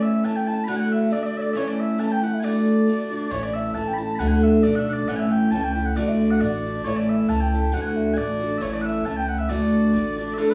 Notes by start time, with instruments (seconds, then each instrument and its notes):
Already playing: steel-string acoustic guitar A2 E3 A3 C#4 E4
0.02 bagpipes E5, flute E5
0.23 steel-string acoustic guitar E3 A3 C#4 E4, bagpipes A5, flute A5
0.36 bagpipes G5, flute G5
0.47 steel-string acoustic guitar A3 C#4 E4, bagpipes A5, flute A5
0.64 steel-string acoustic guitar D2 A2 A3, bagpipes B5
0.68 steel-string acoustic guitar D3 D4 F#4, bagpipes F#5, flute F#5
0.76 flute F#5, bagpipes F#5 G#5
0.91 flute E5, bagpipes E5
1.11 steel-string acoustic guitar D3 A3 D4 F#4, flute D5, bagpipes D5
1.22 flute E5, bagpipes E5
1.26 flute D5, bagpipes D5
1.37 flute C#5, bagpipes E5
1.41 bagpipes D5, flute D5
1.53 steel-string acoustic guitar A2 E3 A3 C#4 E4, bagpipes C#5 E5, flute C#5
1.68 bagpipes D5, flute D5
1.80 bagpipes E5, flute E5
1.98 steel-string acoustic guitar E3 A3 C#4 E4, bagpipes A5, flute A5
2.12 bagpipes G5, flute G5
2.21 steel-string acoustic guitar A3 C#4 E4, bagpipes F#5, flute F#5
2.34 flute E5
2.40 steel-string acoustic guitar D2 A2 D3 A3 D4 F#4, bagpipes G#5
2.44 bagpipes D5, flute D5
2.86 steel-string acoustic guitar D3 A3 D4 F#4
3.09 steel-string acoustic guitar D3 A3 D4 F#4
3.29 upright bass A1, steel-string acoustic guitar A2 E3 A3 C#4 E4, bagpipes C#5, flute C#5 D5
3.43 bagpipes D5, flute D5
3.54 bagpipes E5, flute E5
3.74 upright bass A1, steel-string acoustic guitar E3 A3 C#4 E4, bagpipes A5, flute A5
3.88 flute G5
3.94 bagpipes B5
3.98 steel-string acoustic guitar A3 C#4 E4, bagpipes A5, flute A5
4.16 steel-string acoustic guitar D2, upright bass D2, bagpipes F#5 B5
4.20 steel-string acoustic guitar A2 D3 A3 D4 F#4, flute F#5
4.28 flute F#5, bagpipes F#5 G#5
4.43 bagpipes E5, flute E5
4.56 flute E5
4.63 upright bass B1, steel-string acoustic guitar D3 A3 D4 F#4, flute D5, bagpipes D5
4.75 bagpipes E5 F#5
4.89 bagpipes D5 F#5
5.07 upright bass A1, steel-string acoustic guitar A2 E3 A3 C#4 E4, bagpipes F#5, flute F#5
5.16 flute E5, bagpipes E5 G#5
5.31 flute G5, bagpipes G5
5.51 upright bass C#2, steel-string acoustic guitar E3 A3 C#4 E4, bagpipes A5, flute A5
5.63 bagpipes G5, flute G5
5.75 steel-string acoustic guitar A3 C#4 E4
5.85 bagpipes F#5, flute F#5
5.96 steel-string acoustic guitar D2 A2 D3 A3 D4 F#4, upright bass D2, bagpipes D5, flute D5
6.09 flute E5
6.31 bagpipes F#5, flute F#5
6.40 upright bass A1, steel-string acoustic guitar D3 A3 D4 F#4, bagpipes D5, flute D5
6.64 steel-string acoustic guitar D3 A3 D4 F#4
6.84 upright bass A1, steel-string acoustic guitar A2 E3 A3 C#4 E4, bagpipes C#5, flute C#5
6.96 bagpipes D5, flute D5
7.09 bagpipes E5, flute E5
7.28 upright bass C#2, steel-string acoustic guitar E3 A3 C#4 E4, bagpipes A5, flute A5
7.41 bagpipes G5, flute G5
7.52 steel-string acoustic guitar A3 C#4 E4, flute A5
7.72 steel-string acoustic guitar D2 A2 D3 A3 D4 F#4, upright bass D2, flute F#5, bagpipes F#5
7.82 flute F#5, bagpipes G#5
7.86 bagpipes F#5
7.96 flute E5
8.14 upright bass A1, steel-string acoustic guitar D3, flute D5, bagpipes D5 G#5
8.18 steel-string acoustic guitar A3 D4 F#4
8.39 steel-string acoustic guitar D3 A3 D4 F#4
8.58 upright bass A1, steel-string acoustic guitar A2 E3 A3, flute C#5, bagpipes E5
8.62 steel-string acoustic guitar C#4 E4, bagpipes C#5
8.73 bagpipes D5, flute D5
8.81 bagpipes E5 F#5
8.86 flute E5
9.04 upright bass C#2, steel-string acoustic guitar E3 A3 C#4 E4, bagpipes A5, flute A5
9.17 bagpipes G5, flute G5
9.28 bagpipes F#5, flute F#5
9.38 bagpipes E5, flute E5
9.49 steel-string acoustic guitar D2 A2 D3 A3 D4 F#4, upright bass D2, bagpipes D5, flute D5
9.92 upright bass A1, steel-string acoustic guitar D3 A3 D4 F#4
10.16 steel-string acoustic guitar D3 A3 D4 F#4
10.34 steel-string acoustic guitar D2, bagpipes E5
10.38 steel-string acoustic guitar A2 D3 A3 D4 F#4, bagpipes A4, flute A4
10.50 flute B4, bagpipes B4